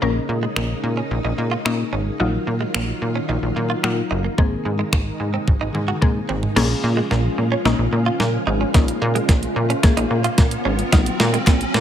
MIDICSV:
0, 0, Header, 1, 8, 480
1, 0, Start_track
1, 0, Tempo, 545455
1, 16, Time_signature, 4, 2, 24, 8
1, 10387, End_track
2, 0, Start_track
2, 0, Title_t, "Clean electric guitar"
2, 0, Program_c, 0, 27
2, 18, Note_on_c, 0, 58, 79
2, 95, Note_off_c, 0, 58, 0
2, 377, Note_on_c, 0, 56, 77
2, 454, Note_off_c, 0, 56, 0
2, 496, Note_on_c, 0, 58, 79
2, 574, Note_off_c, 0, 58, 0
2, 856, Note_on_c, 0, 61, 71
2, 934, Note_off_c, 0, 61, 0
2, 1096, Note_on_c, 0, 63, 77
2, 1174, Note_off_c, 0, 63, 0
2, 1333, Note_on_c, 0, 65, 75
2, 1412, Note_off_c, 0, 65, 0
2, 1695, Note_on_c, 0, 61, 72
2, 1773, Note_off_c, 0, 61, 0
2, 1934, Note_on_c, 0, 63, 79
2, 2012, Note_off_c, 0, 63, 0
2, 2293, Note_on_c, 0, 56, 75
2, 2372, Note_off_c, 0, 56, 0
2, 2413, Note_on_c, 0, 58, 82
2, 2492, Note_off_c, 0, 58, 0
2, 2776, Note_on_c, 0, 61, 74
2, 2854, Note_off_c, 0, 61, 0
2, 2893, Note_on_c, 0, 63, 83
2, 2972, Note_off_c, 0, 63, 0
2, 3255, Note_on_c, 0, 65, 69
2, 3333, Note_off_c, 0, 65, 0
2, 3614, Note_on_c, 0, 63, 80
2, 3693, Note_off_c, 0, 63, 0
2, 3735, Note_on_c, 0, 58, 71
2, 3813, Note_off_c, 0, 58, 0
2, 3856, Note_on_c, 0, 56, 80
2, 3934, Note_off_c, 0, 56, 0
2, 4216, Note_on_c, 0, 56, 78
2, 4294, Note_off_c, 0, 56, 0
2, 4337, Note_on_c, 0, 58, 80
2, 4414, Note_off_c, 0, 58, 0
2, 4697, Note_on_c, 0, 60, 67
2, 4774, Note_off_c, 0, 60, 0
2, 4937, Note_on_c, 0, 63, 79
2, 5014, Note_off_c, 0, 63, 0
2, 5176, Note_on_c, 0, 66, 74
2, 5253, Note_off_c, 0, 66, 0
2, 5534, Note_on_c, 0, 60, 72
2, 5613, Note_off_c, 0, 60, 0
2, 5775, Note_on_c, 0, 58, 74
2, 5853, Note_off_c, 0, 58, 0
2, 6134, Note_on_c, 0, 56, 72
2, 6213, Note_off_c, 0, 56, 0
2, 6256, Note_on_c, 0, 58, 80
2, 6334, Note_off_c, 0, 58, 0
2, 6616, Note_on_c, 0, 61, 73
2, 6694, Note_off_c, 0, 61, 0
2, 6735, Note_on_c, 0, 63, 82
2, 6813, Note_off_c, 0, 63, 0
2, 7096, Note_on_c, 0, 65, 68
2, 7173, Note_off_c, 0, 65, 0
2, 7454, Note_on_c, 0, 63, 78
2, 7532, Note_off_c, 0, 63, 0
2, 7575, Note_on_c, 0, 61, 68
2, 7653, Note_off_c, 0, 61, 0
2, 7695, Note_on_c, 0, 58, 77
2, 7773, Note_off_c, 0, 58, 0
2, 8055, Note_on_c, 0, 56, 77
2, 8133, Note_off_c, 0, 56, 0
2, 8174, Note_on_c, 0, 58, 82
2, 8252, Note_off_c, 0, 58, 0
2, 8535, Note_on_c, 0, 61, 72
2, 8613, Note_off_c, 0, 61, 0
2, 8774, Note_on_c, 0, 63, 81
2, 8853, Note_off_c, 0, 63, 0
2, 9015, Note_on_c, 0, 65, 74
2, 9093, Note_off_c, 0, 65, 0
2, 9374, Note_on_c, 0, 61, 73
2, 9453, Note_off_c, 0, 61, 0
2, 9614, Note_on_c, 0, 63, 80
2, 9692, Note_off_c, 0, 63, 0
2, 9976, Note_on_c, 0, 56, 79
2, 10054, Note_off_c, 0, 56, 0
2, 10097, Note_on_c, 0, 58, 84
2, 10174, Note_off_c, 0, 58, 0
2, 10387, End_track
3, 0, Start_track
3, 0, Title_t, "Synth pluck"
3, 0, Program_c, 1, 84
3, 15, Note_on_c, 1, 58, 84
3, 18, Note_on_c, 1, 61, 79
3, 20, Note_on_c, 1, 70, 99
3, 758, Note_off_c, 1, 58, 0
3, 759, Note_off_c, 1, 61, 0
3, 760, Note_off_c, 1, 70, 0
3, 1454, Note_on_c, 1, 58, 87
3, 1456, Note_on_c, 1, 61, 77
3, 1458, Note_on_c, 1, 63, 101
3, 1826, Note_off_c, 1, 58, 0
3, 1827, Note_off_c, 1, 61, 0
3, 1828, Note_off_c, 1, 63, 0
3, 1933, Note_on_c, 1, 54, 85
3, 1936, Note_on_c, 1, 63, 76
3, 1937, Note_on_c, 1, 65, 93
3, 2677, Note_off_c, 1, 54, 0
3, 2678, Note_off_c, 1, 63, 0
3, 2679, Note_off_c, 1, 65, 0
3, 3374, Note_on_c, 1, 54, 88
3, 3377, Note_on_c, 1, 63, 81
3, 3380, Note_on_c, 1, 65, 98
3, 3746, Note_off_c, 1, 54, 0
3, 3748, Note_off_c, 1, 63, 0
3, 3749, Note_off_c, 1, 65, 0
3, 3855, Note_on_c, 1, 58, 86
3, 3856, Note_on_c, 1, 60, 82
3, 3858, Note_on_c, 1, 68, 96
3, 4597, Note_off_c, 1, 58, 0
3, 4598, Note_off_c, 1, 60, 0
3, 4599, Note_off_c, 1, 68, 0
3, 5294, Note_on_c, 1, 58, 89
3, 5296, Note_on_c, 1, 60, 79
3, 5298, Note_on_c, 1, 68, 96
3, 5666, Note_off_c, 1, 58, 0
3, 5667, Note_off_c, 1, 60, 0
3, 5668, Note_off_c, 1, 68, 0
3, 5775, Note_on_c, 1, 58, 86
3, 5777, Note_on_c, 1, 61, 78
3, 5779, Note_on_c, 1, 68, 93
3, 6517, Note_off_c, 1, 58, 0
3, 6518, Note_off_c, 1, 61, 0
3, 6520, Note_off_c, 1, 68, 0
3, 6735, Note_on_c, 1, 58, 84
3, 6737, Note_on_c, 1, 61, 78
3, 6739, Note_on_c, 1, 63, 89
3, 7478, Note_off_c, 1, 58, 0
3, 7478, Note_off_c, 1, 61, 0
3, 7480, Note_off_c, 1, 63, 0
3, 7693, Note_on_c, 1, 58, 89
3, 7695, Note_on_c, 1, 61, 76
3, 7696, Note_on_c, 1, 63, 96
3, 8437, Note_off_c, 1, 58, 0
3, 8437, Note_off_c, 1, 61, 0
3, 8438, Note_off_c, 1, 63, 0
3, 8652, Note_on_c, 1, 58, 89
3, 8653, Note_on_c, 1, 61, 77
3, 8656, Note_on_c, 1, 68, 98
3, 9396, Note_off_c, 1, 58, 0
3, 9397, Note_off_c, 1, 61, 0
3, 9398, Note_off_c, 1, 68, 0
3, 9612, Note_on_c, 1, 54, 90
3, 9614, Note_on_c, 1, 63, 80
3, 9615, Note_on_c, 1, 65, 97
3, 10356, Note_off_c, 1, 54, 0
3, 10357, Note_off_c, 1, 63, 0
3, 10358, Note_off_c, 1, 65, 0
3, 10387, End_track
4, 0, Start_track
4, 0, Title_t, "String machine"
4, 0, Program_c, 2, 50
4, 0, Note_on_c, 2, 49, 84
4, 0, Note_on_c, 2, 56, 76
4, 0, Note_on_c, 2, 58, 71
4, 16, Note_on_c, 2, 63, 89
4, 1902, Note_off_c, 2, 56, 0
4, 1903, Note_off_c, 2, 49, 0
4, 1903, Note_off_c, 2, 58, 0
4, 1917, Note_off_c, 2, 63, 0
4, 1937, Note_on_c, 2, 54, 73
4, 1938, Note_on_c, 2, 51, 85
4, 1938, Note_on_c, 2, 58, 76
4, 1938, Note_on_c, 2, 65, 91
4, 3837, Note_off_c, 2, 54, 0
4, 3838, Note_off_c, 2, 51, 0
4, 3838, Note_off_c, 2, 65, 0
4, 3856, Note_on_c, 2, 51, 70
4, 3856, Note_on_c, 2, 56, 75
4, 3856, Note_on_c, 2, 63, 91
4, 3857, Note_on_c, 2, 48, 81
4, 5742, Note_off_c, 2, 58, 0
4, 5757, Note_off_c, 2, 48, 0
4, 5757, Note_off_c, 2, 51, 0
4, 5757, Note_off_c, 2, 56, 0
4, 5757, Note_off_c, 2, 63, 0
4, 5775, Note_on_c, 2, 49, 78
4, 5775, Note_on_c, 2, 53, 72
4, 5775, Note_on_c, 2, 56, 73
4, 5775, Note_on_c, 2, 65, 87
4, 5776, Note_on_c, 2, 58, 71
4, 9580, Note_off_c, 2, 49, 0
4, 9580, Note_off_c, 2, 56, 0
4, 9581, Note_off_c, 2, 53, 0
4, 9581, Note_off_c, 2, 58, 0
4, 9615, Note_on_c, 2, 51, 85
4, 9615, Note_on_c, 2, 54, 79
4, 9615, Note_on_c, 2, 58, 76
4, 10387, Note_off_c, 2, 51, 0
4, 10387, Note_off_c, 2, 54, 0
4, 10387, Note_off_c, 2, 58, 0
4, 10387, Note_off_c, 2, 65, 0
4, 10387, End_track
5, 0, Start_track
5, 0, Title_t, "Analog synth bass"
5, 0, Program_c, 3, 38
5, 16, Note_on_c, 3, 34, 110
5, 172, Note_off_c, 3, 34, 0
5, 255, Note_on_c, 3, 46, 108
5, 411, Note_off_c, 3, 46, 0
5, 496, Note_on_c, 3, 34, 101
5, 652, Note_off_c, 3, 34, 0
5, 736, Note_on_c, 3, 46, 95
5, 892, Note_off_c, 3, 46, 0
5, 976, Note_on_c, 3, 34, 98
5, 1054, Note_off_c, 3, 34, 0
5, 1095, Note_on_c, 3, 34, 95
5, 1173, Note_off_c, 3, 34, 0
5, 1216, Note_on_c, 3, 46, 94
5, 1372, Note_off_c, 3, 46, 0
5, 1458, Note_on_c, 3, 46, 109
5, 1613, Note_off_c, 3, 46, 0
5, 1696, Note_on_c, 3, 32, 88
5, 1852, Note_off_c, 3, 32, 0
5, 1936, Note_on_c, 3, 34, 102
5, 2092, Note_off_c, 3, 34, 0
5, 2176, Note_on_c, 3, 46, 103
5, 2332, Note_off_c, 3, 46, 0
5, 2417, Note_on_c, 3, 34, 101
5, 2573, Note_off_c, 3, 34, 0
5, 2656, Note_on_c, 3, 46, 100
5, 2812, Note_off_c, 3, 46, 0
5, 2897, Note_on_c, 3, 34, 105
5, 2974, Note_off_c, 3, 34, 0
5, 3016, Note_on_c, 3, 34, 91
5, 3094, Note_off_c, 3, 34, 0
5, 3137, Note_on_c, 3, 46, 97
5, 3293, Note_off_c, 3, 46, 0
5, 3378, Note_on_c, 3, 46, 94
5, 3533, Note_off_c, 3, 46, 0
5, 3618, Note_on_c, 3, 30, 89
5, 3773, Note_off_c, 3, 30, 0
5, 3857, Note_on_c, 3, 32, 108
5, 4012, Note_off_c, 3, 32, 0
5, 4096, Note_on_c, 3, 44, 98
5, 4252, Note_off_c, 3, 44, 0
5, 4335, Note_on_c, 3, 32, 115
5, 4492, Note_off_c, 3, 32, 0
5, 4576, Note_on_c, 3, 44, 95
5, 4732, Note_off_c, 3, 44, 0
5, 4819, Note_on_c, 3, 32, 113
5, 4896, Note_off_c, 3, 32, 0
5, 4938, Note_on_c, 3, 32, 94
5, 5015, Note_off_c, 3, 32, 0
5, 5058, Note_on_c, 3, 44, 93
5, 5214, Note_off_c, 3, 44, 0
5, 5299, Note_on_c, 3, 44, 106
5, 5454, Note_off_c, 3, 44, 0
5, 5536, Note_on_c, 3, 32, 92
5, 5692, Note_off_c, 3, 32, 0
5, 5776, Note_on_c, 3, 34, 102
5, 5932, Note_off_c, 3, 34, 0
5, 6017, Note_on_c, 3, 46, 103
5, 6172, Note_off_c, 3, 46, 0
5, 6256, Note_on_c, 3, 34, 105
5, 6412, Note_off_c, 3, 34, 0
5, 6495, Note_on_c, 3, 46, 86
5, 6652, Note_off_c, 3, 46, 0
5, 6734, Note_on_c, 3, 34, 107
5, 6813, Note_off_c, 3, 34, 0
5, 6853, Note_on_c, 3, 34, 96
5, 6932, Note_off_c, 3, 34, 0
5, 6974, Note_on_c, 3, 46, 101
5, 7131, Note_off_c, 3, 46, 0
5, 7214, Note_on_c, 3, 46, 102
5, 7371, Note_off_c, 3, 46, 0
5, 7454, Note_on_c, 3, 32, 91
5, 7611, Note_off_c, 3, 32, 0
5, 7694, Note_on_c, 3, 34, 114
5, 7851, Note_off_c, 3, 34, 0
5, 7934, Note_on_c, 3, 46, 107
5, 8091, Note_off_c, 3, 46, 0
5, 8173, Note_on_c, 3, 34, 100
5, 8330, Note_off_c, 3, 34, 0
5, 8414, Note_on_c, 3, 46, 94
5, 8571, Note_off_c, 3, 46, 0
5, 8655, Note_on_c, 3, 34, 98
5, 8734, Note_off_c, 3, 34, 0
5, 8773, Note_on_c, 3, 34, 101
5, 8852, Note_off_c, 3, 34, 0
5, 8893, Note_on_c, 3, 46, 92
5, 9050, Note_off_c, 3, 46, 0
5, 9136, Note_on_c, 3, 46, 110
5, 9292, Note_off_c, 3, 46, 0
5, 9374, Note_on_c, 3, 32, 85
5, 9531, Note_off_c, 3, 32, 0
5, 9615, Note_on_c, 3, 34, 101
5, 9771, Note_off_c, 3, 34, 0
5, 9855, Note_on_c, 3, 46, 108
5, 10011, Note_off_c, 3, 46, 0
5, 10093, Note_on_c, 3, 34, 104
5, 10250, Note_off_c, 3, 34, 0
5, 10334, Note_on_c, 3, 46, 101
5, 10387, Note_off_c, 3, 46, 0
5, 10387, End_track
6, 0, Start_track
6, 0, Title_t, "Riser"
6, 0, Program_c, 4, 103
6, 5777, Note_on_c, 4, 60, 76
6, 10387, Note_off_c, 4, 60, 0
6, 10387, End_track
7, 0, Start_track
7, 0, Title_t, "Muted clean electric guitar strokes"
7, 257, Note_on_c, 9, 29, 44
7, 345, Note_off_c, 9, 29, 0
7, 735, Note_on_c, 9, 29, 44
7, 823, Note_off_c, 9, 29, 0
7, 1216, Note_on_c, 9, 29, 42
7, 1304, Note_off_c, 9, 29, 0
7, 2174, Note_on_c, 9, 29, 44
7, 2262, Note_off_c, 9, 29, 0
7, 2656, Note_on_c, 9, 29, 43
7, 2744, Note_off_c, 9, 29, 0
7, 3134, Note_on_c, 9, 29, 44
7, 3222, Note_off_c, 9, 29, 0
7, 3373, Note_on_c, 9, 29, 43
7, 3461, Note_off_c, 9, 29, 0
7, 4095, Note_on_c, 9, 29, 44
7, 4183, Note_off_c, 9, 29, 0
7, 4575, Note_on_c, 9, 29, 44
7, 4663, Note_off_c, 9, 29, 0
7, 5056, Note_on_c, 9, 29, 43
7, 5144, Note_off_c, 9, 29, 0
7, 6016, Note_on_c, 9, 29, 44
7, 6104, Note_off_c, 9, 29, 0
7, 6496, Note_on_c, 9, 29, 43
7, 6584, Note_off_c, 9, 29, 0
7, 6975, Note_on_c, 9, 29, 44
7, 7063, Note_off_c, 9, 29, 0
7, 7215, Note_on_c, 9, 29, 43
7, 7303, Note_off_c, 9, 29, 0
7, 7936, Note_on_c, 9, 29, 44
7, 8024, Note_off_c, 9, 29, 0
7, 8416, Note_on_c, 9, 29, 45
7, 8504, Note_off_c, 9, 29, 0
7, 8895, Note_on_c, 9, 29, 42
7, 8983, Note_off_c, 9, 29, 0
7, 9856, Note_on_c, 9, 29, 45
7, 9944, Note_off_c, 9, 29, 0
7, 10337, Note_on_c, 9, 29, 48
7, 10387, Note_off_c, 9, 29, 0
7, 10387, End_track
8, 0, Start_track
8, 0, Title_t, "Drums"
8, 496, Note_on_c, 9, 26, 101
8, 584, Note_off_c, 9, 26, 0
8, 1459, Note_on_c, 9, 26, 100
8, 1547, Note_off_c, 9, 26, 0
8, 2415, Note_on_c, 9, 26, 108
8, 2503, Note_off_c, 9, 26, 0
8, 3378, Note_on_c, 9, 26, 96
8, 3466, Note_off_c, 9, 26, 0
8, 3856, Note_on_c, 9, 36, 110
8, 3944, Note_off_c, 9, 36, 0
8, 4335, Note_on_c, 9, 36, 108
8, 4337, Note_on_c, 9, 26, 104
8, 4423, Note_off_c, 9, 36, 0
8, 4425, Note_off_c, 9, 26, 0
8, 4818, Note_on_c, 9, 48, 53
8, 4819, Note_on_c, 9, 36, 112
8, 4906, Note_off_c, 9, 48, 0
8, 4907, Note_off_c, 9, 36, 0
8, 5058, Note_on_c, 9, 47, 63
8, 5146, Note_off_c, 9, 47, 0
8, 5178, Note_on_c, 9, 47, 61
8, 5266, Note_off_c, 9, 47, 0
8, 5298, Note_on_c, 9, 45, 75
8, 5299, Note_on_c, 9, 36, 110
8, 5386, Note_off_c, 9, 45, 0
8, 5387, Note_off_c, 9, 36, 0
8, 5537, Note_on_c, 9, 43, 90
8, 5625, Note_off_c, 9, 43, 0
8, 5658, Note_on_c, 9, 43, 82
8, 5746, Note_off_c, 9, 43, 0
8, 5777, Note_on_c, 9, 38, 50
8, 5777, Note_on_c, 9, 49, 89
8, 5865, Note_off_c, 9, 38, 0
8, 5865, Note_off_c, 9, 49, 0
8, 6257, Note_on_c, 9, 38, 51
8, 6345, Note_off_c, 9, 38, 0
8, 6736, Note_on_c, 9, 38, 60
8, 6824, Note_off_c, 9, 38, 0
8, 7216, Note_on_c, 9, 38, 61
8, 7304, Note_off_c, 9, 38, 0
8, 7694, Note_on_c, 9, 38, 64
8, 7695, Note_on_c, 9, 36, 114
8, 7695, Note_on_c, 9, 42, 67
8, 7782, Note_off_c, 9, 38, 0
8, 7783, Note_off_c, 9, 36, 0
8, 7783, Note_off_c, 9, 42, 0
8, 7816, Note_on_c, 9, 42, 54
8, 7904, Note_off_c, 9, 42, 0
8, 8058, Note_on_c, 9, 42, 51
8, 8146, Note_off_c, 9, 42, 0
8, 8173, Note_on_c, 9, 36, 105
8, 8174, Note_on_c, 9, 38, 70
8, 8175, Note_on_c, 9, 42, 71
8, 8261, Note_off_c, 9, 36, 0
8, 8262, Note_off_c, 9, 38, 0
8, 8263, Note_off_c, 9, 42, 0
8, 8296, Note_on_c, 9, 42, 51
8, 8384, Note_off_c, 9, 42, 0
8, 8537, Note_on_c, 9, 42, 47
8, 8625, Note_off_c, 9, 42, 0
8, 8653, Note_on_c, 9, 42, 80
8, 8654, Note_on_c, 9, 38, 73
8, 8656, Note_on_c, 9, 36, 119
8, 8741, Note_off_c, 9, 42, 0
8, 8742, Note_off_c, 9, 38, 0
8, 8744, Note_off_c, 9, 36, 0
8, 8776, Note_on_c, 9, 42, 52
8, 8864, Note_off_c, 9, 42, 0
8, 9014, Note_on_c, 9, 42, 56
8, 9102, Note_off_c, 9, 42, 0
8, 9133, Note_on_c, 9, 38, 80
8, 9133, Note_on_c, 9, 42, 74
8, 9136, Note_on_c, 9, 36, 114
8, 9221, Note_off_c, 9, 38, 0
8, 9221, Note_off_c, 9, 42, 0
8, 9224, Note_off_c, 9, 36, 0
8, 9252, Note_on_c, 9, 42, 56
8, 9340, Note_off_c, 9, 42, 0
8, 9493, Note_on_c, 9, 42, 54
8, 9581, Note_off_c, 9, 42, 0
8, 9614, Note_on_c, 9, 38, 81
8, 9614, Note_on_c, 9, 42, 70
8, 9615, Note_on_c, 9, 36, 107
8, 9702, Note_off_c, 9, 38, 0
8, 9702, Note_off_c, 9, 42, 0
8, 9703, Note_off_c, 9, 36, 0
8, 9736, Note_on_c, 9, 42, 55
8, 9824, Note_off_c, 9, 42, 0
8, 9855, Note_on_c, 9, 38, 87
8, 9943, Note_off_c, 9, 38, 0
8, 9977, Note_on_c, 9, 42, 54
8, 10065, Note_off_c, 9, 42, 0
8, 10093, Note_on_c, 9, 36, 106
8, 10094, Note_on_c, 9, 38, 85
8, 10094, Note_on_c, 9, 39, 81
8, 10095, Note_on_c, 9, 42, 71
8, 10181, Note_off_c, 9, 36, 0
8, 10182, Note_off_c, 9, 38, 0
8, 10182, Note_off_c, 9, 39, 0
8, 10183, Note_off_c, 9, 42, 0
8, 10215, Note_on_c, 9, 42, 52
8, 10303, Note_off_c, 9, 42, 0
8, 10335, Note_on_c, 9, 38, 88
8, 10387, Note_off_c, 9, 38, 0
8, 10387, End_track
0, 0, End_of_file